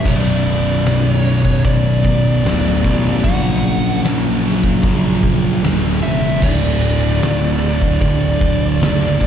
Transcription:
0.05 B0 B1 F#2 B2 D5, kick, crash
0.85 B0, snare, open hi-hat
1.12 C#5
1.25 B1 F#2 B2
1.45 kick
1.64 B0 D5, kick, open hi-hat
2.04 B1 F#2 B2, kick
2.44 D1 B1 F#2 B2, snare, open hi-hat
2.84 A1 B1 F#2 B2, kick
3.23 A#1 F#2 C#3 F#3 F#5, kick, open hi-hat
4.04 A#1, snare, open hi-hat
4.44 F#2 C#3 F#3
4.63 kick
4.83 A#1, kick, open hi-hat
5.23 F#2 C#3 F#3, kick
5.63 D1 F#2 C#3 F#3, snare, open hi-hat
6.01 E1 F#2 C#3 F#3 E5
6.42 D1 D2 A2 D3 D5, kick, crash
7.21 D1, snare, open hi-hat
7.62 D2 A2 D3
7.82 kick
8.01 D1 D5, kick, open hi-hat
8.41 D2 A2 D3, kick
8.81 F#1 D2 A2 D3, snare, open hi-hat
9.20 A1 D2 A2 D3, kick

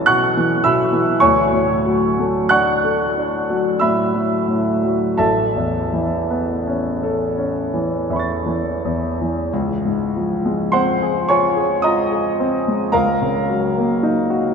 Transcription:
Already playing: B1 E3 B3 C#4 A4 A5 E6 A6
0.06 B2 F#5 C#6 F#6
0.37 E3
0.64 B2 E5 B5 E6
0.93 E3
1.20 D2 C#5 G#5 C#6
1.53 A2
1.86 F#3
2.19 A3
2.49 D4 F#5 C#6 F#6
2.84 A4
3.18 D4
3.50 F#3
3.79 A2 E5 B5 E6
4.14 F#3
4.48 A2
4.83 F#3
5.17 A1 A4 E5 A5
5.56 E2
5.94 E3
6.30 B3
6.67 C#4
7.03 A4
7.38 C#4
7.74 E3
8.10 E2 E5 B5
8.16 C#6 A6
8.46 E3
8.85 E2
9.21 E3
9.53 C#2
9.85 G#2
10.16 F3
10.45 G#3
10.72 C4 C5 F#5 C6
11.02 G#4
11.28 F4 C#5 G#5 C#6
11.57 G#4
11.82 F4 D#5 A#5 D#6
12.12 G#4
12.40 C4
12.68 G#3
12.92 C#2 A#4 F5 A#5
13.22 C#3
13.49 F#3
13.78 A#3
14.03 D#4
14.30 F#4

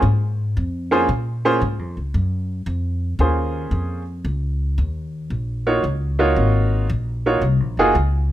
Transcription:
0.02 G#2
0.57 F2
0.91 A#3 C#4 F4 G#4 C5
1.09 A#2
1.45 A#3 C#4 F4 G#4 C5
1.61 G#2
1.79 F2
1.97 C#2
2.14 F#2
2.66 F2
3.19 D#2 A#3 C#4 F4 G#4 C5
3.71 F2
4.25 C#2
4.78 D#2
5.30 A#1
5.67 A#3 D#4 F4 F#4 C#5
5.84 C#2
6.19 A#3 D#4 F4 F#4 C#5
6.36 G#1
6.90 A#1
7.26 A#3 D#4 F4 F#4 C#5
7.41 C2
7.60 A#1
7.77 F#1 A#3 D#4 F4 F#4 G#4
7.95 C#2

